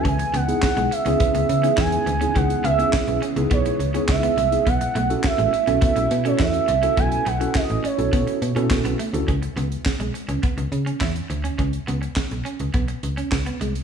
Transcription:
<<
  \new Staff \with { instrumentName = "Soft synth lead" } { \time 4/4 \key cis \minor \tempo 4 = 104 gis''8 fis''4 e''4. gis''4 | fis''8 e''4 r8 cis''8. cis''16 e''4 | fis''8 fis''8 e''4 e''8. cis''16 e''4 | gis''8 fis''8 dis''8 cis''4. r4 |
r1 | r1 | }
  \new Staff \with { instrumentName = "Tine electric piano" } { \time 4/4 \key cis \minor r8. <b dis' e' gis'>8. r16 <b cis' e' gis'>8. r16 <b dis' e' gis'>8. r16 <b dis' e' gis'>16~ | <b dis' e' gis'>8 r16 <b cis' e' gis'>8. r16 <b dis' e' gis'>8. r16 <b dis' e' gis'>8. r16 <b dis' e' gis'>16 | r8. <cis' e' fis' a'>8. r16 <cis' e' fis' a'>8. r16 <cis' e' fis' a'>8. r16 <cis' e' fis' a'>16~ | <cis' e' fis' a'>8 r16 <cis' e' fis' a'>8. r16 <cis' e' fis' a'>8. r16 <cis' e' fis' a'>8. r16 <cis' e' fis' a'>16 |
r1 | r1 | }
  \new Staff \with { instrumentName = "Clean electric guitar" } { \time 4/4 \key cis \minor cis'16 r16 b16 r8 gis16 r16 cis'16 b16 r8 cis'16 e'16 r8 cis'16 | cis'16 r16 b16 r8. cis'16 r16 b16 r8 cis'16 r16 b16 gis16 r16 | b16 r16 a16 r8 gis16 r16 cis'16 b16 r8 cis'16 e'16 r8 cis'16 | cis'16 r16 b16 r8. cis'16 r16 b16 r8 cis'16 r16 b16 a16 r16 |
cis'16 r16 b16 r8 gis16 r16 cis'16 b16 r8 cis'16 e'16 r8 cis'16 | cis'16 r16 b16 r8. cis'16 r16 b16 r8 cis'16 r16 b16 gis16 r16 | }
  \new Staff \with { instrumentName = "String machine" } { \clef bass \time 4/4 \key cis \minor << { b1~ | b1~ | b1~ | b1 |
r1 | r1 | } \\ { <cis e gis>1~ | <cis e gis>1 | <a e'>1~ | <a e'>1 |
r1 | r1 | } >> }
  \new Staff \with { instrumentName = "FM bass" } { \clef bass \time 4/4 \key cis \minor cis,8 cis,8 r16 b,,16 r16 cis,16 r16 cis,16 cis8 e,8 d,8 | cis,8 cis,8 r16 b,,16 r16 cis,16 b,,8 cis,8 cis,8 bis,,8 | b,,8 b,,8 r16 a,,16 r16 b,,16 r16 b,,16 b,8 e,8 bis,,8 | b,,8 b,,8 r16 a,,16 r16 b,,16 b,16 r16 b,16 b,16 b,16 b,,16 r16 d,16 |
cis,8 cis,8 r16 b,,16 r16 cis,16 r16 cis,16 cis8 e,8 d,8 | cis,8 cis,8 r16 b,,16 r16 cis,16 b,,8 cis,8 cis,8 bis,,8 | }
  \new DrumStaff \with { instrumentName = "Drums" } \drummode { \time 4/4 <hh bd>16 hh16 hh16 hh16 <hc bd sn>16 hh16 hh16 hh16 <hh bd>16 hh16 hh16 hh16 <hc bd sn>16 hh16 hh16 hh16 | <hh bd>16 hh16 hh16 hh16 <hc bd sn>16 hh16 hh16 hh16 <hh bd>16 hh16 hh16 hh16 <hc bd sn>16 hh16 hh16 hh16 | <hh bd>16 hh16 hh16 hh16 <hc bd sn>16 hh16 hh16 hh16 <hh bd>16 hh16 hh16 hh16 <hc bd sn>16 hh16 hh16 hh16 | <hh bd>16 hh16 hh16 hh16 <hc bd sn>16 hh16 hh16 hh16 <hh bd>16 hh16 hh16 hh16 <hc bd sn>16 hh16 hh16 hh16 |
<hh bd>16 hh16 hh16 hh16 <hc bd sn>16 hh16 hh16 hh16 <hh bd>16 hh16 hh16 hh16 <hc bd sn>16 hh16 hh16 hh16 | <hh bd>16 hh16 hh16 hh16 <hc bd sn>16 hh16 hh16 hh16 <hh bd>16 hh16 hh16 hh16 <hc bd sn>16 hh16 hh16 hh16 | }
>>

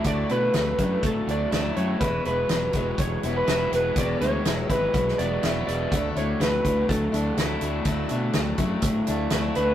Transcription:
<<
  \new Staff \with { instrumentName = "Electric slide guitar" } { \time 4/4 \key d \lydian \tempo 4 = 123 d''8 b'4. a'8 d''8 d''8 cis''8 | b'8 b'4. cis''8. b'8. b'8 | d''8 cis''4 b'4 d''4 d''8~ | d''8 cis''8 b'4 a'2~ |
a'2. r8 b'8 | }
  \new Staff \with { instrumentName = "Steel-string acoustic guitar" } { \time 4/4 \key d \lydian <d fis a d' e'>8 <a d' e'>8 <fis a d' e'>8 <a d' e'>4 <a d' e'>8 <fis a d' e'>4 | <e, b, fis gis b e'>8 <fis gis b e'>8 <fis gis b e'>8 <fis gis b e'>4 <fis gis b e'>8 <fis gis b e'>4 | <e, b, fis gis b e'>8 <fis gis b e'>8 <fis gis b e'>8 <fis gis b e'>4 <fis gis b e'>8 <fis gis b e'>4 | <d fis a d' e'>8 <a d' e'>8 <fis a d' e'>8 <a d' e'>4 <a d' e'>8 <fis a d' e'>4 |
<d fis a d' e'>8 <a d' e'>8 <fis a d' e'>8 <a d' e'>4 <a d' e'>8 <fis a d' e'>4 | }
  \new Staff \with { instrumentName = "Overdriven electric guitar" } { \clef bass \time 4/4 \key d \lydian <d fis a d' e'>8 a8 fis8 a8 fis8 d'8 e'8 a8 | e,8 gis8 fis8 gis8 fis8 b8 e'8 gis8 | e,8 gis8 fis8 gis8 fis8 b8 e'8 gis8 | d8 a8 fis8 a8 fis8 d'8 e'8 a8 |
d8 a8 fis8 a8 fis8 d'8 e'8 a8 | }
  \new Staff \with { instrumentName = "Fingered electric bass" } { \clef bass \time 4/4 \key d \lydian d,8 b,8 d,8 fis,8 a,8 d,8 d,8 fis,8 | e,,8 e,,8 e,,8 e,,8 e,,8 e,,8 e,,8 e,,8 | e,,8 d,8 e,,8 gis,,8 b,,8 e,,8 e,,8 e,,8 | d,8 d,8 d,8 d,8 d,8 d,8 d,8 d,8 |
d,8 b,8 d,8 fis,8 a,8 d,8 d,8 d,8 | }
  \new DrumStaff \with { instrumentName = "Drums" } \drummode { \time 4/4 <hh bd>8 hh8 <hh sn>8 <hh bd>8 <hh bd>8 hh8 <hh sn>8 hh8 | <hh bd>8 hh8 <hh sn>8 <hh bd>8 <hh bd>8 hh8 <hh sn>8 hh8 | <hh bd>8 hh8 <hh sn>8 <hh bd>8 <hh bd>16 sn16 hh8 <hh sn>8 hh8 | <hh bd>8 hh8 <hh sn>8 <hh bd>8 <hh bd>8 hh8 <hh sn>8 hh8 |
<hh bd>8 hh8 <hh sn>8 <hh bd>8 <hh bd>8 hh8 <hh sn>8 hh8 | }
>>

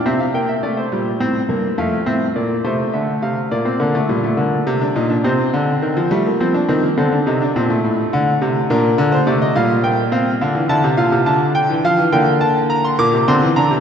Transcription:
<<
  \new Staff \with { instrumentName = "Grand piano" } { \time 12/8 \key f \mixolydian \tempo 4. = 70 << { e''16 f''16 g''16 e''16 d''16 c''4.~ c''16 f''8 e''8 d''8 c''8 e''8 f''8 | \key g \minor d''2. c''2. | a'2. bes'8. c''16 d''16 ees''16 f''8 g''8 f''8 | f''8 a''8 f''8 a''8 g''8 f''8 g''8 a''8 bes''16 c'''16 d'''8 c'''8 bes''8 | } \\ { c'8 bes8 a8 g8 c'8 bes8 a8 c'8 bes8 a4. | bes16 c'16 bes16 a16 g16 a16 bes8. d'16 ees'16 d'16 c'4. a16 bes16 c'16 d'16 c'16 bes16 | c'16 d'16 ees'16 d'16 c'16 a4.~ a16 d'8 bes8 a8 g8 bes8 c'8 | d'8 e'8 f'8 d'4. bes4. bes8 c'8 d'8 | } >> }
  \new Staff \with { instrumentName = "Grand piano" } { \clef bass \time 12/8 \key f \mixolydian c4. bes,8 a,8 g,8 f,8 a,8 bes,8 c8 d8 c8 | \key g \minor bes,8 d8 bes,8 d8 c8 bes,8 c8 d8 ees16 f16 g8 f8 ees8 | d8 c8 bes,8 a,8 d8 c8 bes,8 d8 c8 bes,4. | d16 e16 d16 c16 bes,16 c16 d8. e16 f16 e16 d4. bes,16 c16 d16 e16 d16 c16 | }
>>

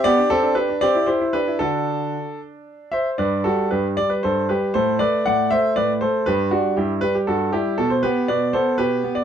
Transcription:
<<
  \new Staff \with { instrumentName = "Grand piano" } { \time 6/8 \key g \major \tempo 4. = 78 <g' d''>8 <c' a'>8 <d' b'>8 <g' d''>8 <e' c''>8 <d' b'>8 | <d' a'>2~ <d' a'>8 <c'' e''>8 | <b' d''>8 <fis' a'>8 <g' b'>8 d''16 b'16 <a' c''>8 <g' b'>8 | <a' c''>8 <b' d''>8 <d'' fis''>8 <c'' e''>8 <b' d''>8 <a' c''>8 |
<g' b'>8 <d' fis'>8 <e' g'>8 b'16 g'16 <fis' a'>8 <e' g'>8 | a'16 c''16 <g' b'>8 <b' d''>8 <a' c''>8 <g' b'>8. d''16 | }
  \new Staff \with { instrumentName = "Grand piano" } { \clef bass \time 6/8 \key g \major b16 d'16 g'16 d'16 g'16 d'16 c'16 e'16 g'16 e'16 g'16 e'16 | <d fis'>4. r4. | g,8 g8 g,8 g8 g,8 g8 | a,8 a8 a,8 a8 a,8 a8 |
g,8 g8 g,8 g8 g,8 g8 | b,8 b8 b,8 b8 b,8 b8 | }
>>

